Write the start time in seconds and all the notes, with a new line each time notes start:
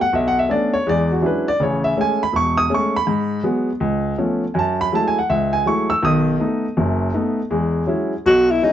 0.01 F#5
0.13 B1 E5
0.28 F#5
0.39 E5
0.49 A3 B3 C#4 D4 D5
0.73 C#5
0.87 E2 G#3 D5
1.12 F#4
1.22 F#3 G#3 C#4 D4 E4
1.26 B4
1.48 D5
1.60 A1 C#3 C#5
1.84 E5
1.97 G#3 A3 C#4
2.01 G#5
2.23 B5
2.33 E1 C#6
2.57 D#6
2.69 G#3 A3 C#4
2.74 C#6
2.96 B5
3.07 G#2
3.43 F#3 G#3 B3
3.80 C#2
4.18 F3 A3 B3 C#4
4.54 F#2 G#5
4.59 A5
4.81 B5
4.93 F#3 G#3 A3 E4 A5
5.08 G#5
5.19 F#5
5.29 C#2 E5
5.53 G#5
5.66 F#3 G#3 A3 E4 C#6
5.90 E6
6.02 B1 D#3 D#6
6.40 A3 B3 D#4
6.77 F#1 F#2
7.14 A3 B3 D#4
7.50 E2 G#3
7.87 F#3 G#3 C#4 E4
8.26 B1 F#4
8.51 E4
8.62 F#3 G#3 C#4 D#4 E4